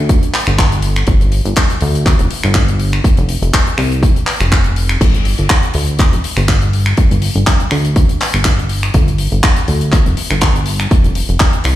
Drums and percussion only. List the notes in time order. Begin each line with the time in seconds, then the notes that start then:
0.09 kick, closed hi-hat
0.23 closed hi-hat
0.34 clap, open hi-hat
0.47 finger snap, closed hi-hat
0.58 kick, clap, closed hi-hat
0.72 closed hi-hat
0.82 open hi-hat
0.96 finger snap, closed hi-hat
1.07 kick, closed hi-hat
1.21 closed hi-hat
1.32 open hi-hat
1.45 closed hi-hat
1.56 kick, clap, closed hi-hat
1.70 closed hi-hat
1.81 open hi-hat
1.95 closed hi-hat
2.06 kick, clap, closed hi-hat
2.19 closed hi-hat
2.31 open hi-hat
2.43 finger snap, closed hi-hat
2.54 kick, clap, closed hi-hat
2.68 closed hi-hat
2.80 open hi-hat
2.93 finger snap, closed hi-hat
3.04 kick, closed hi-hat
3.17 closed hi-hat
3.29 open hi-hat
3.43 closed hi-hat
3.53 kick, clap, closed hi-hat
3.67 closed hi-hat
3.78 finger snap, open hi-hat
3.92 closed hi-hat
4.03 kick, closed hi-hat
4.16 closed hi-hat
4.27 clap, open hi-hat
4.40 finger snap, closed hi-hat
4.52 kick, clap, closed hi-hat
4.64 closed hi-hat
4.76 open hi-hat
4.89 finger snap, closed hi-hat
5.01 kick, closed hi-hat, crash
5.15 closed hi-hat
5.25 open hi-hat
5.38 closed hi-hat
5.49 kick, clap, closed hi-hat
5.63 closed hi-hat
5.74 open hi-hat
5.87 closed hi-hat
5.99 kick, clap, closed hi-hat
6.13 closed hi-hat
6.24 open hi-hat
6.37 finger snap, closed hi-hat
6.48 kick, clap, closed hi-hat
6.61 closed hi-hat
6.73 open hi-hat
6.86 finger snap, closed hi-hat
6.97 kick, closed hi-hat
7.11 closed hi-hat
7.22 open hi-hat
7.35 closed hi-hat
7.47 kick, clap, closed hi-hat
7.60 closed hi-hat
7.71 finger snap, open hi-hat
7.85 closed hi-hat
7.96 kick, closed hi-hat
8.09 closed hi-hat
8.21 clap, open hi-hat
8.34 finger snap, closed hi-hat
8.45 kick, clap, closed hi-hat
8.59 closed hi-hat
8.69 open hi-hat
8.83 finger snap, closed hi-hat
8.94 kick, closed hi-hat
9.08 closed hi-hat
9.18 open hi-hat
9.32 closed hi-hat
9.43 kick, clap, closed hi-hat
9.56 closed hi-hat
9.68 open hi-hat
9.81 closed hi-hat
9.92 kick, clap, closed hi-hat
10.06 closed hi-hat
10.17 open hi-hat
10.31 finger snap
10.41 kick, clap, closed hi-hat
10.56 closed hi-hat
10.66 open hi-hat
10.80 finger snap, closed hi-hat
10.91 kick, closed hi-hat
11.04 closed hi-hat
11.15 open hi-hat
11.29 closed hi-hat
11.40 kick, clap, closed hi-hat
11.53 closed hi-hat
11.64 finger snap, open hi-hat